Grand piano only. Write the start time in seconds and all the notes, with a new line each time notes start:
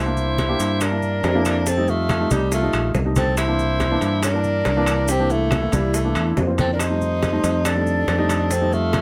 0.06 A#3 D4 E4
0.48 A#3 D4 G4
0.92 A#3 D4 E4
1.35 A#3 D4 E4
1.77 G3 A3 D#4
2.20 G3 A3 D#4
2.62 G3 A3 D#4
3.06 G3 A3 D#4
3.48 E3 A#3 D4
3.91 E3 A#3 D4
4.34 E3 A#3 D4
4.77 E3 A#3 D4
5.20 E3 A#3 D4
5.62 E3 A#3 E4
6.04 E3 A#3 D4
6.47 E3 A#3 C4
6.89 G3 A3 D#4
7.33 G3 A3 D#4
7.75 G3 A3 D#4
8.18 G3 A3 D#4
8.61 G3 A3 D#4